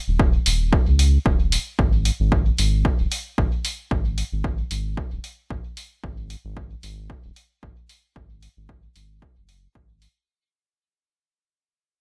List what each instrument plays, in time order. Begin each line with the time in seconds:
0.08 analog synth bass D#1
0.20 kick
0.46 analog synth bass D#1, open hi-hat
0.73 kick
0.87 analog synth bass C#2
0.99 open hi-hat
1.26 analog synth bass D#1, kick
1.52 open hi-hat
1.79 analog synth bass G#1, kick
2.05 open hi-hat
2.20 analog synth bass G#1
2.32 kick
2.58 analog synth bass G#1, open hi-hat
2.85 kick
3.00 analog synth bass D#1
3.12 open hi-hat
3.38 analog synth bass G#1, kick
3.65 open hi-hat
3.91 analog synth bass G#1, kick
4.18 open hi-hat
4.32 analog synth bass G#1
4.44 kick
4.71 analog synth bass G#1, open hi-hat
4.97 kick
5.12 analog synth bass D#1
5.24 open hi-hat
5.50 analog synth bass G#1, kick
5.77 open hi-hat
6.04 analog synth bass G#1, kick
6.30 open hi-hat
6.45 analog synth bass G#1
6.57 kick
6.83 analog synth bass G#1, open hi-hat
7.10 kick
7.24 analog synth bass D#1
7.36 open hi-hat
7.63 analog synth bass G#1, kick
7.89 open hi-hat
8.16 analog synth bass G#1, kick
8.43 open hi-hat
8.57 analog synth bass G#1
8.69 kick
8.96 analog synth bass G#1, open hi-hat
9.22 kick
9.37 analog synth bass F#1
9.49 open hi-hat
9.75 analog synth bass G#1, kick
10.02 open hi-hat